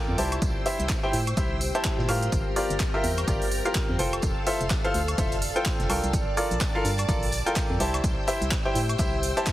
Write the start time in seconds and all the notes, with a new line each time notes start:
Already playing: A#3 F4 A4 A#4 D5 G5 A5 D6
0.08 F2
0.18 C2 E4 G4 C5 G5 A5 E6, open hi-hat, tambourine
0.32 closed hi-hat, high woodblock
0.42 C2, kick, closed hi-hat, tambourine
0.57 C5 E5
0.65 E4 G4 C5 E5, snare, open hi-hat, tambourine
0.80 C2, closed hi-hat
0.89 kick, snare, clap, closed hi-hat, tambourine
1.03 E4 G4 C5 G5
1.13 A2, open hi-hat, tambourine
1.27 closed hi-hat, high woodblock
1.37 C2 E4 G4 C5 E5, kick, closed hi-hat, tambourine
1.61 open hi-hat, tambourine
1.75 E4 G4 C5 A5, closed hi-hat
1.84 kick, snare, clap, closed hi-hat, tambourine
1.98 A#2, snare
2.08 A2 F4 G4 A#4 F5, open hi-hat, tambourine, high woodblock
2.23 closed hi-hat
2.32 G1 A#4 G5 F6, kick, closed hi-hat, tambourine
2.56 F4 G4 A#4 D5, open hi-hat, tambourine
2.70 G1, closed hi-hat
2.79 kick, snare, clap, closed hi-hat, tambourine
2.94 F4 G4 A#4 E5
3.04 E2, open hi-hat, tambourine
3.08 F5
3.17 closed hi-hat, high woodblock
3.28 G1 F4 G4 A#4 D5, kick, closed hi-hat, tambourine
3.42 open hi-hat
3.52 open hi-hat, tambourine
3.65 F4 G4 A#4 F5, closed hi-hat
3.75 kick, snare, clap, closed hi-hat, tambourine
3.89 F2
3.99 F1 F4 A4 C5 F5 G5 A5 E6, open hi-hat, tambourine
4.13 closed hi-hat, high woodblock
4.22 F1, kick, closed hi-hat, tambourine
4.30 G5
4.44 F4 A4 C5 D5 E5, snare, open hi-hat, tambourine
4.61 F1, closed hi-hat
4.70 kick, snare, clap, closed hi-hat, tambourine
4.84 F4 A4 C5 F5, closed hi-hat
4.94 D2, open hi-hat, tambourine
5.08 closed hi-hat, high woodblock
5.18 F1 F4 A4 C5 E5, kick, closed hi-hat, tambourine
5.32 closed hi-hat
5.42 open hi-hat, tambourine
5.56 F4 A4 C5 G5, closed hi-hat
5.65 kick, snare, clap, closed hi-hat, tambourine
5.80 F1, snare, closed hi-hat
5.90 C2 F4 A4 A#4 G5, open hi-hat, tambourine, high woodblock
6.03 C2, closed hi-hat
6.13 A#1 D5 A5 D6, kick, closed hi-hat, tambourine, shaker
6.37 F4 A4 A#4 D5, open hi-hat, tambourine, shaker
6.51 A#1, closed hi-hat, shaker
6.61 kick, snare, clap, closed hi-hat, tambourine, shaker
6.75 F4 A4 A#4 F5
6.85 G2, open hi-hat, tambourine, shaker
6.98 closed hi-hat, high woodblock, shaker
7.09 A#1 F4 A4 A#4 D5, kick, closed hi-hat, tambourine, shaker
7.23 open hi-hat
7.32 open hi-hat, tambourine, shaker
7.46 F4 A4 A#4 G5, closed hi-hat, shaker
7.56 kick, snare, clap, closed hi-hat, tambourine, shaker
7.70 F2
7.80 C2 E4 G4 C5 G5 A5 E6, open hi-hat, tambourine, shaker
7.94 closed hi-hat, high woodblock, shaker
7.99 E5
8.04 C2 C5, kick, closed hi-hat, tambourine, shaker
8.27 E4 G4 C5 E5, snare, open hi-hat, tambourine, shaker
8.41 C2, closed hi-hat, shaker
8.51 kick, snare, clap, closed hi-hat, tambourine, shaker
8.65 E4 G4 C5 G5
8.75 A2, open hi-hat, tambourine, shaker
8.89 closed hi-hat, high woodblock, shaker
8.98 C2 E4 G4 C5 E5, kick, closed hi-hat, tambourine, shaker
9.23 open hi-hat, tambourine, shaker
9.37 E4 G4 C5 A5, closed hi-hat, shaker
9.47 kick, snare, clap, closed hi-hat, tambourine, shaker